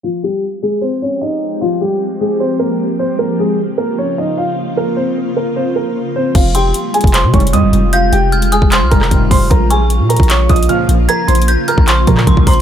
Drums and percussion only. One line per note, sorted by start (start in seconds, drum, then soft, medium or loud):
6.35 kick loud
6.35 closed hi-hat medium
6.35 crash loud
6.55 closed hi-hat medium
6.74 closed hi-hat medium
6.94 closed hi-hat medium
7.01 kick loud
7.01 closed hi-hat medium
7.07 closed hi-hat soft
7.14 clap loud
7.14 closed hi-hat loud
7.34 kick loud
7.34 closed hi-hat soft
7.40 closed hi-hat medium
7.47 closed hi-hat medium
7.53 closed hi-hat medium
7.73 closed hi-hat medium
7.93 closed hi-hat medium
8.13 closed hi-hat medium
8.32 closed hi-hat medium
8.42 closed hi-hat medium
8.52 closed hi-hat medium
8.62 kick loud
8.72 clap loud
8.72 closed hi-hat loud
8.92 kick loud
8.92 closed hi-hat medium
9.01 cross-stick medium
9.01 clap medium
9.11 kick medium
9.11 closed hi-hat medium
9.31 kick loud
9.31 open hi-hat medium
9.51 kick loud
9.51 closed hi-hat medium
9.70 closed hi-hat loud
9.90 closed hi-hat medium
10.10 closed hi-hat medium
10.17 kick loud
10.17 closed hi-hat medium
10.23 closed hi-hat soft
10.30 clap loud
10.30 closed hi-hat loud
10.49 kick loud
10.49 closed hi-hat soft
10.56 closed hi-hat medium
10.63 closed hi-hat medium
10.69 closed hi-hat medium
10.89 closed hi-hat medium
11.09 closed hi-hat medium
11.28 closed hi-hat medium
11.35 closed hi-hat medium
11.42 closed hi-hat medium
11.48 closed hi-hat medium
11.68 closed hi-hat medium
11.78 kick loud
11.88 clap loud
11.88 closed hi-hat loud
12.07 kick medium
12.07 closed hi-hat medium
12.17 cross-stick medium
12.17 clap medium
12.27 kick medium
12.27 closed hi-hat medium
12.37 kick medium
12.47 kick loud
12.47 closed hi-hat medium
12.47 open hi-hat medium
12.53 closed hi-hat medium